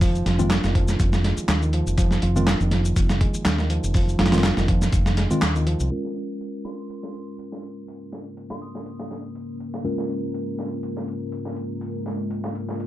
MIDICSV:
0, 0, Header, 1, 8, 480
1, 0, Start_track
1, 0, Tempo, 491803
1, 12, Time_signature, 4, 2, 24, 8
1, 12559, End_track
2, 0, Start_track
2, 0, Title_t, "Synth bell"
2, 0, Program_c, 0, 98
2, 6487, Note_on_c, 0, 84, 80
2, 7165, Note_off_c, 0, 84, 0
2, 8302, Note_on_c, 0, 84, 82
2, 8390, Note_off_c, 0, 84, 0
2, 8409, Note_on_c, 0, 87, 83
2, 9086, Note_off_c, 0, 87, 0
2, 12559, End_track
3, 0, Start_track
3, 0, Title_t, "Ambient pad"
3, 0, Program_c, 1, 92
3, 5771, Note_on_c, 1, 65, 69
3, 5773, Note_on_c, 1, 61, 72
3, 5775, Note_on_c, 1, 56, 81
3, 5775, Note_on_c, 1, 70, 88
3, 12559, Note_off_c, 1, 56, 0
3, 12559, Note_off_c, 1, 61, 0
3, 12559, Note_off_c, 1, 65, 0
3, 12559, Note_off_c, 1, 70, 0
3, 12559, End_track
4, 0, Start_track
4, 0, Title_t, "Tine electric piano"
4, 0, Program_c, 2, 4
4, 380, Note_on_c, 2, 51, 91
4, 381, Note_on_c, 2, 56, 85
4, 381, Note_on_c, 2, 60, 88
4, 381, Note_on_c, 2, 65, 99
4, 477, Note_off_c, 2, 51, 0
4, 478, Note_off_c, 2, 56, 0
4, 478, Note_off_c, 2, 60, 0
4, 478, Note_off_c, 2, 65, 0
4, 2303, Note_on_c, 2, 51, 87
4, 2303, Note_on_c, 2, 56, 81
4, 2304, Note_on_c, 2, 65, 100
4, 2305, Note_on_c, 2, 60, 84
4, 2399, Note_off_c, 2, 51, 0
4, 2399, Note_off_c, 2, 56, 0
4, 2399, Note_off_c, 2, 65, 0
4, 2400, Note_off_c, 2, 60, 0
4, 4220, Note_on_c, 2, 56, 83
4, 4221, Note_on_c, 2, 51, 94
4, 4221, Note_on_c, 2, 65, 104
4, 4222, Note_on_c, 2, 60, 84
4, 4318, Note_off_c, 2, 51, 0
4, 4318, Note_off_c, 2, 56, 0
4, 4318, Note_off_c, 2, 60, 0
4, 4318, Note_off_c, 2, 65, 0
4, 5180, Note_on_c, 2, 56, 82
4, 5181, Note_on_c, 2, 51, 88
4, 5181, Note_on_c, 2, 60, 83
4, 5181, Note_on_c, 2, 65, 99
4, 5277, Note_off_c, 2, 56, 0
4, 5278, Note_off_c, 2, 51, 0
4, 5278, Note_off_c, 2, 60, 0
4, 5278, Note_off_c, 2, 65, 0
4, 5769, Note_on_c, 2, 56, 67
4, 5769, Note_on_c, 2, 61, 59
4, 5769, Note_on_c, 2, 65, 63
4, 5770, Note_on_c, 2, 70, 75
4, 9584, Note_off_c, 2, 56, 0
4, 9584, Note_off_c, 2, 61, 0
4, 9584, Note_off_c, 2, 65, 0
4, 9585, Note_off_c, 2, 70, 0
4, 9609, Note_on_c, 2, 56, 68
4, 9609, Note_on_c, 2, 65, 65
4, 9610, Note_on_c, 2, 61, 65
4, 9610, Note_on_c, 2, 70, 75
4, 12559, Note_off_c, 2, 56, 0
4, 12559, Note_off_c, 2, 61, 0
4, 12559, Note_off_c, 2, 65, 0
4, 12559, Note_off_c, 2, 70, 0
4, 12559, End_track
5, 0, Start_track
5, 0, Title_t, "Reed electric piano"
5, 0, Program_c, 3, 4
5, 0, Control_c, 3, 64, 127
5, 0, Note_on_c, 3, 51, 76
5, 0, Note_on_c, 3, 53, 77
5, 0, Note_on_c, 3, 56, 82
5, 0, Note_on_c, 3, 58, 73
5, 0, Note_on_c, 3, 65, 77
5, 13, Note_off_c, 3, 53, 0
5, 13, Note_on_c, 3, 53, 84
5, 241, Note_off_c, 3, 53, 0
5, 257, Note_off_c, 3, 65, 0
5, 257, Note_on_c, 3, 65, 74
5, 367, Note_off_c, 3, 65, 0
5, 386, Note_off_c, 3, 58, 0
5, 386, Note_on_c, 3, 58, 76
5, 480, Note_off_c, 3, 58, 0
5, 626, Note_off_c, 3, 51, 0
5, 626, Note_on_c, 3, 51, 74
5, 721, Note_off_c, 3, 51, 0
5, 740, Note_on_c, 3, 53, 79
5, 858, Note_off_c, 3, 53, 0
5, 1216, Note_off_c, 3, 56, 0
5, 1216, Note_on_c, 3, 56, 77
5, 1337, Note_off_c, 3, 56, 0
5, 1588, Note_on_c, 3, 51, 73
5, 1681, Note_off_c, 3, 51, 0
5, 1698, Note_on_c, 3, 53, 79
5, 1818, Note_off_c, 3, 53, 0
5, 1935, Note_on_c, 3, 53, 85
5, 2162, Note_off_c, 3, 53, 0
5, 2178, Note_on_c, 3, 65, 76
5, 2288, Note_off_c, 3, 65, 0
5, 2305, Note_on_c, 3, 58, 73
5, 2400, Note_off_c, 3, 58, 0
5, 2546, Note_on_c, 3, 51, 77
5, 2640, Note_off_c, 3, 51, 0
5, 2657, Note_on_c, 3, 53, 78
5, 2777, Note_off_c, 3, 53, 0
5, 3137, Note_on_c, 3, 56, 79
5, 3257, Note_off_c, 3, 56, 0
5, 3506, Note_on_c, 3, 51, 75
5, 3600, Note_off_c, 3, 51, 0
5, 3615, Note_on_c, 3, 53, 76
5, 3736, Note_off_c, 3, 53, 0
5, 3856, Note_on_c, 3, 53, 81
5, 4083, Note_off_c, 3, 53, 0
5, 4095, Note_on_c, 3, 65, 77
5, 4206, Note_off_c, 3, 65, 0
5, 4225, Note_on_c, 3, 58, 77
5, 4320, Note_off_c, 3, 58, 0
5, 4462, Note_on_c, 3, 51, 76
5, 4559, Note_off_c, 3, 51, 0
5, 4575, Note_on_c, 3, 53, 79
5, 4696, Note_off_c, 3, 53, 0
5, 5049, Note_on_c, 3, 56, 81
5, 5173, Note_off_c, 3, 56, 0
5, 5419, Note_on_c, 3, 51, 78
5, 5517, Note_off_c, 3, 51, 0
5, 5531, Note_on_c, 3, 53, 79
5, 5654, Note_off_c, 3, 53, 0
5, 5783, Control_c, 3, 64, 0
5, 12559, End_track
6, 0, Start_track
6, 0, Title_t, "Fingered electric bass"
6, 0, Program_c, 4, 33
6, 0, Note_on_c, 4, 29, 87
6, 206, Note_off_c, 4, 29, 0
6, 253, Note_on_c, 4, 29, 99
6, 565, Note_off_c, 4, 29, 0
6, 625, Note_on_c, 4, 29, 101
6, 925, Note_off_c, 4, 29, 0
6, 972, Note_on_c, 4, 29, 90
6, 1285, Note_off_c, 4, 29, 0
6, 1449, Note_on_c, 4, 39, 100
6, 1763, Note_off_c, 4, 39, 0
6, 1821, Note_on_c, 4, 29, 87
6, 2123, Note_off_c, 4, 29, 0
6, 2171, Note_on_c, 4, 29, 102
6, 2484, Note_off_c, 4, 29, 0
6, 2541, Note_on_c, 4, 29, 104
6, 2843, Note_off_c, 4, 29, 0
6, 2892, Note_on_c, 4, 29, 92
6, 3205, Note_off_c, 4, 29, 0
6, 3371, Note_on_c, 4, 39, 100
6, 3684, Note_off_c, 4, 39, 0
6, 3741, Note_on_c, 4, 29, 90
6, 4043, Note_off_c, 4, 29, 0
6, 4091, Note_on_c, 4, 29, 104
6, 4404, Note_off_c, 4, 29, 0
6, 4461, Note_on_c, 4, 29, 97
6, 4764, Note_off_c, 4, 29, 0
6, 4809, Note_on_c, 4, 29, 93
6, 5123, Note_off_c, 4, 29, 0
6, 5291, Note_on_c, 4, 39, 78
6, 5604, Note_off_c, 4, 39, 0
6, 5662, Note_on_c, 4, 36, 82
6, 5742, Note_off_c, 4, 36, 0
6, 12559, End_track
7, 0, Start_track
7, 0, Title_t, "Muted fingered electric bass strokes"
7, 1341, Note_on_c, 9, 29, 44
7, 1438, Note_off_c, 9, 29, 0
7, 3263, Note_on_c, 9, 29, 44
7, 3360, Note_off_c, 9, 29, 0
7, 5176, Note_on_c, 9, 29, 44
7, 5273, Note_off_c, 9, 29, 0
7, 12559, End_track
8, 0, Start_track
8, 0, Title_t, "Drums"
8, 12, Note_on_c, 9, 46, 82
8, 13, Note_on_c, 9, 36, 111
8, 17, Note_on_c, 9, 82, 50
8, 110, Note_off_c, 9, 46, 0
8, 111, Note_off_c, 9, 36, 0
8, 114, Note_off_c, 9, 82, 0
8, 148, Note_on_c, 9, 82, 29
8, 245, Note_off_c, 9, 82, 0
8, 255, Note_on_c, 9, 38, 41
8, 255, Note_on_c, 9, 42, 68
8, 352, Note_off_c, 9, 38, 0
8, 352, Note_off_c, 9, 42, 0
8, 383, Note_on_c, 9, 82, 60
8, 481, Note_off_c, 9, 82, 0
8, 491, Note_on_c, 9, 38, 114
8, 491, Note_on_c, 9, 42, 89
8, 495, Note_on_c, 9, 39, 101
8, 495, Note_on_c, 9, 82, 49
8, 589, Note_off_c, 9, 38, 0
8, 589, Note_off_c, 9, 42, 0
8, 592, Note_off_c, 9, 39, 0
8, 592, Note_off_c, 9, 82, 0
8, 623, Note_on_c, 9, 82, 29
8, 624, Note_on_c, 9, 38, 58
8, 720, Note_off_c, 9, 82, 0
8, 721, Note_off_c, 9, 38, 0
8, 733, Note_on_c, 9, 36, 98
8, 734, Note_on_c, 9, 42, 69
8, 831, Note_off_c, 9, 36, 0
8, 832, Note_off_c, 9, 42, 0
8, 859, Note_on_c, 9, 82, 60
8, 863, Note_on_c, 9, 38, 46
8, 957, Note_off_c, 9, 82, 0
8, 961, Note_off_c, 9, 38, 0
8, 972, Note_on_c, 9, 42, 87
8, 973, Note_on_c, 9, 36, 113
8, 973, Note_on_c, 9, 82, 50
8, 1070, Note_off_c, 9, 36, 0
8, 1070, Note_off_c, 9, 42, 0
8, 1071, Note_off_c, 9, 82, 0
8, 1102, Note_on_c, 9, 82, 30
8, 1103, Note_on_c, 9, 38, 48
8, 1200, Note_off_c, 9, 82, 0
8, 1201, Note_off_c, 9, 38, 0
8, 1214, Note_on_c, 9, 38, 47
8, 1214, Note_on_c, 9, 42, 66
8, 1312, Note_off_c, 9, 38, 0
8, 1312, Note_off_c, 9, 42, 0
8, 1342, Note_on_c, 9, 82, 59
8, 1440, Note_off_c, 9, 82, 0
8, 1450, Note_on_c, 9, 38, 111
8, 1450, Note_on_c, 9, 42, 89
8, 1455, Note_on_c, 9, 39, 101
8, 1455, Note_on_c, 9, 82, 49
8, 1547, Note_off_c, 9, 38, 0
8, 1547, Note_off_c, 9, 42, 0
8, 1552, Note_off_c, 9, 39, 0
8, 1552, Note_off_c, 9, 82, 0
8, 1584, Note_on_c, 9, 82, 30
8, 1682, Note_off_c, 9, 82, 0
8, 1689, Note_on_c, 9, 42, 66
8, 1786, Note_off_c, 9, 42, 0
8, 1826, Note_on_c, 9, 82, 58
8, 1923, Note_off_c, 9, 82, 0
8, 1928, Note_on_c, 9, 42, 86
8, 1931, Note_on_c, 9, 36, 112
8, 1938, Note_on_c, 9, 82, 53
8, 2026, Note_off_c, 9, 42, 0
8, 2029, Note_off_c, 9, 36, 0
8, 2035, Note_off_c, 9, 82, 0
8, 2057, Note_on_c, 9, 38, 41
8, 2069, Note_on_c, 9, 82, 30
8, 2155, Note_off_c, 9, 38, 0
8, 2167, Note_off_c, 9, 82, 0
8, 2168, Note_on_c, 9, 42, 69
8, 2265, Note_off_c, 9, 42, 0
8, 2306, Note_on_c, 9, 82, 61
8, 2404, Note_off_c, 9, 82, 0
8, 2409, Note_on_c, 9, 38, 119
8, 2409, Note_on_c, 9, 42, 86
8, 2417, Note_on_c, 9, 39, 100
8, 2417, Note_on_c, 9, 82, 52
8, 2507, Note_off_c, 9, 38, 0
8, 2507, Note_off_c, 9, 42, 0
8, 2514, Note_off_c, 9, 39, 0
8, 2514, Note_off_c, 9, 82, 0
8, 2543, Note_on_c, 9, 82, 29
8, 2641, Note_off_c, 9, 82, 0
8, 2648, Note_on_c, 9, 38, 44
8, 2648, Note_on_c, 9, 42, 68
8, 2746, Note_off_c, 9, 38, 0
8, 2746, Note_off_c, 9, 42, 0
8, 2782, Note_on_c, 9, 82, 61
8, 2880, Note_off_c, 9, 82, 0
8, 2892, Note_on_c, 9, 42, 87
8, 2893, Note_on_c, 9, 36, 111
8, 2893, Note_on_c, 9, 82, 51
8, 2990, Note_off_c, 9, 36, 0
8, 2990, Note_off_c, 9, 42, 0
8, 2990, Note_off_c, 9, 82, 0
8, 3020, Note_on_c, 9, 38, 52
8, 3022, Note_on_c, 9, 82, 32
8, 3118, Note_off_c, 9, 38, 0
8, 3120, Note_off_c, 9, 82, 0
8, 3132, Note_on_c, 9, 36, 93
8, 3132, Note_on_c, 9, 42, 69
8, 3229, Note_off_c, 9, 36, 0
8, 3229, Note_off_c, 9, 42, 0
8, 3263, Note_on_c, 9, 82, 61
8, 3360, Note_off_c, 9, 82, 0
8, 3369, Note_on_c, 9, 38, 117
8, 3369, Note_on_c, 9, 42, 85
8, 3375, Note_on_c, 9, 39, 99
8, 3375, Note_on_c, 9, 82, 50
8, 3466, Note_off_c, 9, 38, 0
8, 3466, Note_off_c, 9, 42, 0
8, 3472, Note_off_c, 9, 39, 0
8, 3472, Note_off_c, 9, 82, 0
8, 3499, Note_on_c, 9, 38, 44
8, 3504, Note_on_c, 9, 82, 31
8, 3596, Note_off_c, 9, 38, 0
8, 3601, Note_off_c, 9, 82, 0
8, 3611, Note_on_c, 9, 42, 69
8, 3708, Note_off_c, 9, 42, 0
8, 3747, Note_on_c, 9, 82, 63
8, 3845, Note_off_c, 9, 82, 0
8, 3846, Note_on_c, 9, 46, 83
8, 3850, Note_on_c, 9, 36, 114
8, 3859, Note_on_c, 9, 82, 52
8, 3944, Note_off_c, 9, 46, 0
8, 3948, Note_off_c, 9, 36, 0
8, 3957, Note_off_c, 9, 82, 0
8, 3989, Note_on_c, 9, 82, 30
8, 4087, Note_off_c, 9, 82, 0
8, 4088, Note_on_c, 9, 38, 93
8, 4088, Note_on_c, 9, 42, 67
8, 4154, Note_off_c, 9, 38, 0
8, 4154, Note_off_c, 9, 42, 0
8, 4154, Note_on_c, 9, 38, 91
8, 4154, Note_on_c, 9, 42, 70
8, 4217, Note_off_c, 9, 38, 0
8, 4217, Note_off_c, 9, 42, 0
8, 4217, Note_on_c, 9, 38, 88
8, 4217, Note_on_c, 9, 42, 69
8, 4229, Note_on_c, 9, 82, 67
8, 4273, Note_off_c, 9, 38, 0
8, 4273, Note_off_c, 9, 42, 0
8, 4273, Note_on_c, 9, 38, 87
8, 4273, Note_on_c, 9, 42, 67
8, 4327, Note_off_c, 9, 82, 0
8, 4328, Note_off_c, 9, 38, 0
8, 4328, Note_off_c, 9, 42, 0
8, 4328, Note_on_c, 9, 38, 118
8, 4328, Note_on_c, 9, 42, 92
8, 4335, Note_on_c, 9, 39, 96
8, 4335, Note_on_c, 9, 82, 54
8, 4425, Note_off_c, 9, 38, 0
8, 4425, Note_off_c, 9, 42, 0
8, 4433, Note_off_c, 9, 39, 0
8, 4433, Note_off_c, 9, 82, 0
8, 4461, Note_on_c, 9, 38, 59
8, 4466, Note_on_c, 9, 82, 31
8, 4559, Note_off_c, 9, 38, 0
8, 4563, Note_off_c, 9, 82, 0
8, 4570, Note_on_c, 9, 42, 69
8, 4571, Note_on_c, 9, 36, 97
8, 4668, Note_off_c, 9, 42, 0
8, 4669, Note_off_c, 9, 36, 0
8, 4702, Note_on_c, 9, 38, 46
8, 4704, Note_on_c, 9, 82, 65
8, 4800, Note_off_c, 9, 38, 0
8, 4802, Note_off_c, 9, 82, 0
8, 4807, Note_on_c, 9, 42, 89
8, 4810, Note_on_c, 9, 36, 114
8, 4812, Note_on_c, 9, 82, 52
8, 4904, Note_off_c, 9, 42, 0
8, 4907, Note_off_c, 9, 36, 0
8, 4910, Note_off_c, 9, 82, 0
8, 4939, Note_on_c, 9, 38, 51
8, 4945, Note_on_c, 9, 82, 33
8, 5036, Note_off_c, 9, 38, 0
8, 5042, Note_off_c, 9, 82, 0
8, 5047, Note_on_c, 9, 38, 47
8, 5047, Note_on_c, 9, 42, 69
8, 5145, Note_off_c, 9, 38, 0
8, 5145, Note_off_c, 9, 42, 0
8, 5182, Note_on_c, 9, 82, 62
8, 5279, Note_off_c, 9, 82, 0
8, 5288, Note_on_c, 9, 38, 116
8, 5288, Note_on_c, 9, 42, 84
8, 5292, Note_on_c, 9, 39, 98
8, 5292, Note_on_c, 9, 82, 51
8, 5385, Note_off_c, 9, 38, 0
8, 5385, Note_off_c, 9, 42, 0
8, 5389, Note_off_c, 9, 39, 0
8, 5389, Note_off_c, 9, 82, 0
8, 5422, Note_on_c, 9, 82, 31
8, 5520, Note_off_c, 9, 82, 0
8, 5531, Note_on_c, 9, 42, 66
8, 5629, Note_off_c, 9, 42, 0
8, 5660, Note_on_c, 9, 82, 64
8, 5758, Note_off_c, 9, 82, 0
8, 5771, Note_on_c, 9, 42, 73
8, 5868, Note_off_c, 9, 42, 0
8, 5902, Note_on_c, 9, 38, 35
8, 6000, Note_off_c, 9, 38, 0
8, 6014, Note_on_c, 9, 42, 59
8, 6112, Note_off_c, 9, 42, 0
8, 6253, Note_on_c, 9, 42, 74
8, 6350, Note_off_c, 9, 42, 0
8, 6490, Note_on_c, 9, 38, 38
8, 6490, Note_on_c, 9, 42, 59
8, 6588, Note_off_c, 9, 38, 0
8, 6588, Note_off_c, 9, 42, 0
8, 6734, Note_on_c, 9, 42, 76
8, 6832, Note_off_c, 9, 42, 0
8, 6862, Note_on_c, 9, 38, 46
8, 6960, Note_off_c, 9, 38, 0
8, 6972, Note_on_c, 9, 42, 60
8, 7070, Note_off_c, 9, 42, 0
8, 7212, Note_on_c, 9, 42, 74
8, 7310, Note_off_c, 9, 42, 0
8, 7342, Note_on_c, 9, 38, 37
8, 7440, Note_off_c, 9, 38, 0
8, 7451, Note_on_c, 9, 42, 58
8, 7548, Note_off_c, 9, 42, 0
8, 7692, Note_on_c, 9, 46, 72
8, 7790, Note_off_c, 9, 46, 0
8, 7930, Note_on_c, 9, 38, 38
8, 7930, Note_on_c, 9, 42, 59
8, 8028, Note_off_c, 9, 38, 0
8, 8028, Note_off_c, 9, 42, 0
8, 8170, Note_on_c, 9, 42, 77
8, 8267, Note_off_c, 9, 42, 0
8, 8297, Note_on_c, 9, 38, 53
8, 8395, Note_off_c, 9, 38, 0
8, 8410, Note_on_c, 9, 42, 60
8, 8508, Note_off_c, 9, 42, 0
8, 8540, Note_on_c, 9, 38, 41
8, 8638, Note_off_c, 9, 38, 0
8, 8648, Note_on_c, 9, 42, 79
8, 8746, Note_off_c, 9, 42, 0
8, 8779, Note_on_c, 9, 38, 44
8, 8877, Note_off_c, 9, 38, 0
8, 8890, Note_on_c, 9, 38, 41
8, 8890, Note_on_c, 9, 42, 59
8, 8987, Note_off_c, 9, 38, 0
8, 8987, Note_off_c, 9, 42, 0
8, 9128, Note_on_c, 9, 42, 74
8, 9226, Note_off_c, 9, 42, 0
8, 9371, Note_on_c, 9, 42, 59
8, 9469, Note_off_c, 9, 42, 0
8, 9504, Note_on_c, 9, 38, 46
8, 9601, Note_off_c, 9, 38, 0
8, 9614, Note_on_c, 9, 42, 77
8, 9711, Note_off_c, 9, 42, 0
8, 9742, Note_on_c, 9, 38, 37
8, 9840, Note_off_c, 9, 38, 0
8, 9855, Note_on_c, 9, 42, 58
8, 9952, Note_off_c, 9, 42, 0
8, 10094, Note_on_c, 9, 42, 75
8, 10191, Note_off_c, 9, 42, 0
8, 10333, Note_on_c, 9, 38, 39
8, 10333, Note_on_c, 9, 42, 61
8, 10430, Note_off_c, 9, 38, 0
8, 10430, Note_off_c, 9, 42, 0
8, 10572, Note_on_c, 9, 42, 81
8, 10670, Note_off_c, 9, 42, 0
8, 10702, Note_on_c, 9, 38, 44
8, 10800, Note_off_c, 9, 38, 0
8, 10812, Note_on_c, 9, 42, 60
8, 10909, Note_off_c, 9, 42, 0
8, 11050, Note_on_c, 9, 42, 74
8, 11148, Note_off_c, 9, 42, 0
8, 11177, Note_on_c, 9, 38, 36
8, 11275, Note_off_c, 9, 38, 0
8, 11289, Note_on_c, 9, 42, 61
8, 11386, Note_off_c, 9, 42, 0
8, 11526, Note_on_c, 9, 46, 73
8, 11624, Note_off_c, 9, 46, 0
8, 11770, Note_on_c, 9, 38, 37
8, 11770, Note_on_c, 9, 42, 60
8, 11868, Note_off_c, 9, 38, 0
8, 11868, Note_off_c, 9, 42, 0
8, 12009, Note_on_c, 9, 42, 78
8, 12107, Note_off_c, 9, 42, 0
8, 12140, Note_on_c, 9, 38, 52
8, 12237, Note_off_c, 9, 38, 0
8, 12251, Note_on_c, 9, 42, 63
8, 12349, Note_off_c, 9, 42, 0
8, 12382, Note_on_c, 9, 38, 40
8, 12479, Note_off_c, 9, 38, 0
8, 12492, Note_on_c, 9, 42, 77
8, 12559, Note_off_c, 9, 42, 0
8, 12559, End_track
0, 0, End_of_file